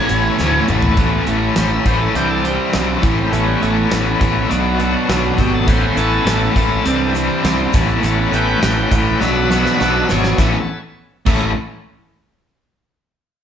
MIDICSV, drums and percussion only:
0, 0, Header, 1, 2, 480
1, 0, Start_track
1, 0, Key_signature, 3, "major"
1, 0, Tempo, 588235
1, 793, Time_signature, 4, 2, 24, 8
1, 10964, End_track
2, 0, Start_track
2, 0, Title_t, "Drums"
2, 75, Note_on_c, 9, 51, 70
2, 80, Note_on_c, 9, 82, 72
2, 156, Note_off_c, 9, 51, 0
2, 161, Note_off_c, 9, 82, 0
2, 315, Note_on_c, 9, 82, 99
2, 317, Note_on_c, 9, 38, 65
2, 397, Note_off_c, 9, 82, 0
2, 398, Note_off_c, 9, 38, 0
2, 556, Note_on_c, 9, 82, 78
2, 559, Note_on_c, 9, 45, 92
2, 637, Note_off_c, 9, 82, 0
2, 640, Note_off_c, 9, 45, 0
2, 672, Note_on_c, 9, 43, 99
2, 754, Note_off_c, 9, 43, 0
2, 790, Note_on_c, 9, 42, 83
2, 794, Note_on_c, 9, 36, 97
2, 872, Note_off_c, 9, 42, 0
2, 876, Note_off_c, 9, 36, 0
2, 1035, Note_on_c, 9, 42, 62
2, 1116, Note_off_c, 9, 42, 0
2, 1272, Note_on_c, 9, 42, 91
2, 1274, Note_on_c, 9, 38, 113
2, 1354, Note_off_c, 9, 42, 0
2, 1355, Note_off_c, 9, 38, 0
2, 1516, Note_on_c, 9, 36, 82
2, 1516, Note_on_c, 9, 42, 70
2, 1597, Note_off_c, 9, 36, 0
2, 1597, Note_off_c, 9, 42, 0
2, 1758, Note_on_c, 9, 42, 95
2, 1839, Note_off_c, 9, 42, 0
2, 1999, Note_on_c, 9, 42, 66
2, 2080, Note_off_c, 9, 42, 0
2, 2230, Note_on_c, 9, 42, 92
2, 2232, Note_on_c, 9, 38, 97
2, 2312, Note_off_c, 9, 42, 0
2, 2313, Note_off_c, 9, 38, 0
2, 2475, Note_on_c, 9, 36, 100
2, 2476, Note_on_c, 9, 42, 68
2, 2556, Note_off_c, 9, 36, 0
2, 2558, Note_off_c, 9, 42, 0
2, 2718, Note_on_c, 9, 42, 84
2, 2800, Note_off_c, 9, 42, 0
2, 2959, Note_on_c, 9, 42, 62
2, 3041, Note_off_c, 9, 42, 0
2, 3194, Note_on_c, 9, 42, 101
2, 3196, Note_on_c, 9, 38, 120
2, 3276, Note_off_c, 9, 42, 0
2, 3277, Note_off_c, 9, 38, 0
2, 3436, Note_on_c, 9, 36, 85
2, 3439, Note_on_c, 9, 42, 62
2, 3517, Note_off_c, 9, 36, 0
2, 3520, Note_off_c, 9, 42, 0
2, 3678, Note_on_c, 9, 42, 81
2, 3760, Note_off_c, 9, 42, 0
2, 3913, Note_on_c, 9, 42, 61
2, 3995, Note_off_c, 9, 42, 0
2, 4156, Note_on_c, 9, 42, 89
2, 4158, Note_on_c, 9, 38, 106
2, 4238, Note_off_c, 9, 42, 0
2, 4239, Note_off_c, 9, 38, 0
2, 4393, Note_on_c, 9, 36, 85
2, 4398, Note_on_c, 9, 42, 61
2, 4400, Note_on_c, 9, 38, 30
2, 4475, Note_off_c, 9, 36, 0
2, 4480, Note_off_c, 9, 42, 0
2, 4481, Note_off_c, 9, 38, 0
2, 4633, Note_on_c, 9, 36, 105
2, 4638, Note_on_c, 9, 42, 87
2, 4638, Note_on_c, 9, 82, 72
2, 4715, Note_off_c, 9, 36, 0
2, 4720, Note_off_c, 9, 42, 0
2, 4720, Note_off_c, 9, 82, 0
2, 4873, Note_on_c, 9, 42, 60
2, 4873, Note_on_c, 9, 82, 94
2, 4955, Note_off_c, 9, 42, 0
2, 4955, Note_off_c, 9, 82, 0
2, 5000, Note_on_c, 9, 82, 26
2, 5081, Note_off_c, 9, 82, 0
2, 5114, Note_on_c, 9, 42, 103
2, 5116, Note_on_c, 9, 38, 117
2, 5117, Note_on_c, 9, 82, 60
2, 5196, Note_off_c, 9, 42, 0
2, 5198, Note_off_c, 9, 38, 0
2, 5198, Note_off_c, 9, 82, 0
2, 5352, Note_on_c, 9, 36, 85
2, 5356, Note_on_c, 9, 42, 71
2, 5434, Note_off_c, 9, 36, 0
2, 5438, Note_off_c, 9, 42, 0
2, 5481, Note_on_c, 9, 82, 27
2, 5563, Note_off_c, 9, 82, 0
2, 5594, Note_on_c, 9, 42, 93
2, 5594, Note_on_c, 9, 82, 67
2, 5675, Note_off_c, 9, 82, 0
2, 5676, Note_off_c, 9, 42, 0
2, 5829, Note_on_c, 9, 82, 80
2, 5843, Note_on_c, 9, 42, 75
2, 5911, Note_off_c, 9, 82, 0
2, 5924, Note_off_c, 9, 42, 0
2, 5957, Note_on_c, 9, 82, 24
2, 6039, Note_off_c, 9, 82, 0
2, 6076, Note_on_c, 9, 42, 87
2, 6078, Note_on_c, 9, 38, 97
2, 6079, Note_on_c, 9, 82, 74
2, 6158, Note_off_c, 9, 42, 0
2, 6159, Note_off_c, 9, 38, 0
2, 6161, Note_off_c, 9, 82, 0
2, 6309, Note_on_c, 9, 82, 94
2, 6316, Note_on_c, 9, 36, 110
2, 6325, Note_on_c, 9, 42, 69
2, 6327, Note_on_c, 9, 38, 31
2, 6391, Note_off_c, 9, 82, 0
2, 6398, Note_off_c, 9, 36, 0
2, 6407, Note_off_c, 9, 42, 0
2, 6408, Note_off_c, 9, 38, 0
2, 6436, Note_on_c, 9, 82, 27
2, 6518, Note_off_c, 9, 82, 0
2, 6552, Note_on_c, 9, 82, 77
2, 6563, Note_on_c, 9, 42, 89
2, 6633, Note_off_c, 9, 82, 0
2, 6645, Note_off_c, 9, 42, 0
2, 6799, Note_on_c, 9, 82, 92
2, 6803, Note_on_c, 9, 42, 61
2, 6880, Note_off_c, 9, 82, 0
2, 6885, Note_off_c, 9, 42, 0
2, 6924, Note_on_c, 9, 82, 25
2, 7006, Note_off_c, 9, 82, 0
2, 7038, Note_on_c, 9, 82, 58
2, 7039, Note_on_c, 9, 42, 101
2, 7040, Note_on_c, 9, 38, 119
2, 7120, Note_off_c, 9, 42, 0
2, 7120, Note_off_c, 9, 82, 0
2, 7122, Note_off_c, 9, 38, 0
2, 7274, Note_on_c, 9, 42, 69
2, 7275, Note_on_c, 9, 36, 83
2, 7279, Note_on_c, 9, 82, 87
2, 7356, Note_off_c, 9, 36, 0
2, 7356, Note_off_c, 9, 42, 0
2, 7361, Note_off_c, 9, 82, 0
2, 7407, Note_on_c, 9, 82, 25
2, 7489, Note_off_c, 9, 82, 0
2, 7515, Note_on_c, 9, 38, 65
2, 7522, Note_on_c, 9, 82, 59
2, 7596, Note_off_c, 9, 38, 0
2, 7603, Note_off_c, 9, 82, 0
2, 7758, Note_on_c, 9, 38, 74
2, 7763, Note_on_c, 9, 82, 83
2, 7839, Note_off_c, 9, 38, 0
2, 7845, Note_off_c, 9, 82, 0
2, 7879, Note_on_c, 9, 38, 67
2, 7881, Note_on_c, 9, 82, 25
2, 7961, Note_off_c, 9, 38, 0
2, 7962, Note_off_c, 9, 82, 0
2, 7998, Note_on_c, 9, 82, 68
2, 8003, Note_on_c, 9, 38, 80
2, 8080, Note_off_c, 9, 82, 0
2, 8085, Note_off_c, 9, 38, 0
2, 8236, Note_on_c, 9, 38, 91
2, 8236, Note_on_c, 9, 82, 86
2, 8317, Note_off_c, 9, 38, 0
2, 8318, Note_off_c, 9, 82, 0
2, 8356, Note_on_c, 9, 38, 83
2, 8358, Note_on_c, 9, 82, 23
2, 8438, Note_off_c, 9, 38, 0
2, 8440, Note_off_c, 9, 82, 0
2, 8473, Note_on_c, 9, 38, 84
2, 8474, Note_on_c, 9, 36, 93
2, 8475, Note_on_c, 9, 82, 79
2, 8555, Note_off_c, 9, 36, 0
2, 8555, Note_off_c, 9, 38, 0
2, 8557, Note_off_c, 9, 82, 0
2, 9189, Note_on_c, 9, 49, 85
2, 9191, Note_on_c, 9, 82, 87
2, 9193, Note_on_c, 9, 36, 101
2, 9271, Note_off_c, 9, 49, 0
2, 9273, Note_off_c, 9, 82, 0
2, 9274, Note_off_c, 9, 36, 0
2, 10964, End_track
0, 0, End_of_file